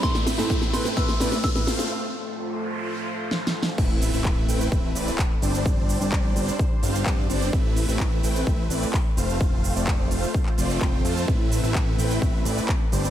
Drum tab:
CC |------------------------------------------------|------------------------------------------------|x-----------------------------------------------|------------------------------------------------|
HH |------o-----------o-----------o-----------o-----|------------------------------------------------|------o-----------o-----------o-----------o-----|------o-----------o-----------o-----------o-----|
SH |x-----x--x--x-----x--x--x-----x--x--x-----x--x--|------------------------------------------------|x-----x--x--x-----x--x--x-----x--x--x-----x--x--|x-----x--x--x-----x--x--x-----x--x--x-----x--x--|
CP |------------------------------------------------|------------------------------------------------|------------x-----------------------x-----------|------------x-----------------------x-----------|
SD |o--o--o--o--o--o--o--o--o--o--o--o--o--o--o--o--|------------------------------------o---o---o---|------------------------------------------------|------------------------------------------------|
BD |o-----------o-----------o-----------o-----------|------------------------------------------------|o-----------o-----------o-----------o-----------|o-----------o-----------o-----------o-----------|

CC |------------------------------------------------|------------------------------------------------|------------------------------------------------|
HH |------o-----------o-----------o-----------o-----|------o-----------o-----------o-----------o-----|------o-----------o-----------o-----------o-----|
SH |x-----x--x--x-----x--x--x-----x--x--x-----x--x--|x-----x--x--x-----x--x--x-----x--x--x-----x--x--|x-----x--x--x-----x--x--x-----x--x--x-----x--x--|
CP |------------x-----------------------x-----------|------------x--------------x--------x-----------|------------x-----------------------x-----------|
SD |------------------------------------------------|------------------------------------------------|------------------------------------------------|
BD |o-----------o-----------o-----------o-----------|o-----------o-----------o-----------o-----------|o-----------o-----------o-----------o-----------|